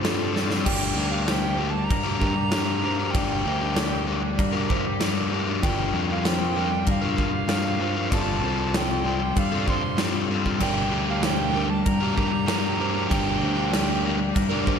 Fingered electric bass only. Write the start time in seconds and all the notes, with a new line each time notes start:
Already playing: G2
0.67 G1
0.97 D2
1.91 G2
3.15 G1
3.46 D2
4.39 G2
5.64 G1
5.93 F2
6.87 G2
8.13 G1
8.41 C2
9.37 G2
10.62 G1
10.92 D2
11.87 G2
13.12 G1
13.42 D2
14.36 G2